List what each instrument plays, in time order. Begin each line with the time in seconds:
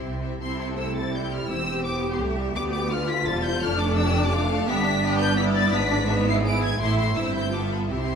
Already playing: viola section C4 E4, violin section G4 E5 C6
0.04 double bass section C2, cello section C3
0.21 viola section C4 E4, violin section G4 E5
0.40 double bass section C2, cello section C3, viola section C4 E4, violin section A4 E5 C6
0.61 violin section C6
0.77 viola section A3 E4, violin section C5 E6
0.96 violin section A6
1.13 viola section G3, violin section G4 C5 G6
1.33 violin section F6
1.48 double bass section E1, cello section E2, viola section C4 E4, violin section G4 C5 E6
1.66 viola section G4
1.85 viola section B3 G4, violin section D6
2.12 violin section C6
2.21 double bass section C2, cello section C2, viola section A3, violin section E5
2.38 viola section G3
2.55 double bass section D2, cello section D2, viola section B3 G4, violin section B4 D5 D6
2.73 violin section D6
2.91 viola section A3 F4, violin section D5 F6
3.09 violin section B6
3.26 double bass section E1, cello section E2, viola section G3, violin section A4 C5 A6
3.44 violin section G6
3.62 double bass section F1, cello section F2, viola section A3 D4, violin section D5 F6
3.79 violin section D6
3.97 violin section G4 D5 E6
4.24 violin section D6
4.33 viola section A3, violin section F4 F5
4.49 violin section A4
4.67 double bass section G1, cello section G2, viola section B3 D4, violin section G4 E5 B6
4.86 viola section D4
5.03 viola section B3, violin section G4 D5
5.19 violin section B4 G6
5.36 viola section B3 E4, violin section D5 B6
5.56 violin section A6
5.73 double bass section G#1, cello section G#2, viola section B3 D4, violin section B6
5.91 viola section D4
6.07 viola section B3 D4, violin section B4 E5
6.27 viola section E4, violin section C7
6.44 viola section B3 E4, violin section G#4 B4 D7
6.65 violin section G#6
6.80 double bass section A1, cello section A2, viola section A3 E4, violin section E4 E5 C6
6.98 violin section C6
7.15 double bass section G1, cello section G2, viola section C4 E4, violin section E4 E5 E6
7.35 violin section G6
7.52 viola section B3 F4, violin section A4 E5 D6
7.72 violin section B5
7.90 double bass section C2, cello section C3, viola section C4 E4, violin section G4 E5 C6